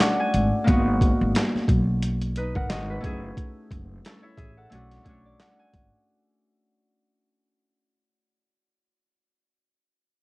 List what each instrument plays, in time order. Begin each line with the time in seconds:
Already playing: harp A3 C#4 D4 E4 F#4 A4 D5 E5
0.00 harp F#5, snare, clap, closed hi-hat
0.20 harp G#5
0.34 upright bass G#1, closed hi-hat
0.64 upright bass G#1, harp A#3 B3 D#4, kick, closed hi-hat
0.69 harp F#4
1.01 kick, closed hi-hat
1.21 upright bass G#1
1.35 snare, clap, closed hi-hat
1.55 muted upright bass stroke, snare
1.68 upright bass B1, kick, closed hi-hat
2.03 closed hi-hat
2.22 closed hi-hat
2.36 harp D#4 B4, closed hi-hat
2.55 upright bass G#1, harp A#4 F#5, kick
2.69 upright bass G#1, harp F#4 D#5, snare, clap, closed hi-hat
2.90 harp D#4 B4
3.01 upright bass F#1, harp A3 C#4 E4, kick, closed hi-hat
3.05 harp G#4
3.37 kick, closed hi-hat
3.71 upright bass F#1, kick, closed hi-hat
4.05 harp C#4 A4, snare, clap, closed hi-hat
4.23 harp E4 C#5
4.37 upright bass A1, harp G#4 E5, kick, closed hi-hat
4.57 harp A4 F#5
4.70 upright bass B1, harp A3 C#4 D4, closed hi-hat
4.75 harp F#4
4.92 snare, closed hi-hat
5.04 upright bass B1, harp A3 C#4 D4 C#5, kick, closed hi-hat
5.09 harp F#4
5.25 harp D5
5.40 harp F#5, snare, clap, closed hi-hat
5.59 harp G#5
5.74 upright bass G#1, kick, closed hi-hat